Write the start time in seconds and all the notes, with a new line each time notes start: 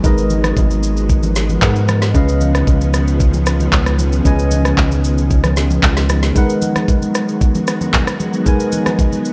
Already playing: D#3 F#3 G#3 B3
0.03 G#1 F3 G#3 D#4 A#4 B4 D#5, kick, low conga, shaker
0.18 shaker
0.30 high conga, shaker
0.44 cross-stick, high conga, shaker
0.57 G#1, kick, low conga, shaker
0.70 high conga, shaker
0.83 shaker
0.97 shaker
1.09 kick, shaker
1.23 high conga, shaker
1.36 snare, shaker
1.49 high conga, shaker
1.62 G#2 G#3 D#4 A#4 B4 F#5, kick, clap, low conga, shaker
1.76 shaker
1.88 cross-stick, high conga, shaker
2.02 snare, shaker
2.14 C#2 C#3 G#3 C#4 B4 D#5 F5, kick, low conga, shaker
2.29 shaker
2.41 high conga, shaker
2.55 cross-stick, high conga, shaker
2.67 C#2, kick, low conga, shaker
2.81 high conga, shaker
2.94 cross-stick, shaker
3.08 shaker
3.20 kick, shaker
3.34 high conga, shaker
3.46 cross-stick, shaker
3.60 high conga, shaker
3.72 C#2, kick, clap, low conga, shaker
3.86 cross-stick, shaker
3.99 high conga, shaker
4.12 shaker
4.24 C#2 C#3 C#4 B4 D#5 G#5, kick, low conga, shaker
4.39 shaker
4.51 high conga, shaker
4.65 cross-stick, high conga, shaker
4.78 C#2, kick, clap, low conga, shaker
4.92 high conga, shaker
5.04 shaker
5.18 shaker
5.31 kick, shaker
5.44 cross-stick, high conga, shaker
5.57 snare, shaker
5.70 high conga, shaker
5.83 C#2, kick, clap, low conga, shaker
5.97 snare, shaker
6.09 cross-stick, high conga, shaker
6.23 snare, shaker
6.35 F#3 G#3 B3 D#4 F#4 A#4 B4 F#5, kick, low conga, shaker
6.50 shaker
6.62 high conga, shaker
6.76 cross-stick, high conga, shaker
6.88 kick, low conga, shaker
7.02 high conga, shaker
7.15 cross-stick, shaker
7.29 shaker
7.41 kick, shaker
7.55 high conga, shaker
7.67 cross-stick, shaker
7.81 high conga, shaker
7.94 kick, clap, low conga, shaker
8.07 cross-stick, shaker
8.20 high conga, shaker
8.33 shaker
8.45 G#3 D#4 A#4 B4 G#5, kick, low conga, shaker
8.60 shaker
8.72 high conga, shaker
8.86 cross-stick, high conga, shaker
8.99 kick, low conga, shaker
9.13 high conga, shaker
9.25 shaker